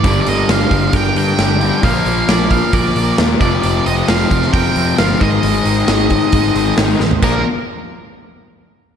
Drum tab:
CC |----------------|----------------|----------------|----------------|
HH |o-o-o-o-o-o-o-o-|o-o-o-o-o-o-o-o-|o-o-o-o-o-o-o-o-|o-o-o-o-o-o-o---|
SD |----o-------o---|----o-------o---|----o--o----o---|----oo------o-o-|
FT |----------------|----------------|----------------|---------------o|
BD |o-----o-o-------|o-----o-o-----o-|------o-o-----o-|------o-o-------|

CC |x---------------|
HH |----------------|
SD |----------------|
FT |----------------|
BD |o---------------|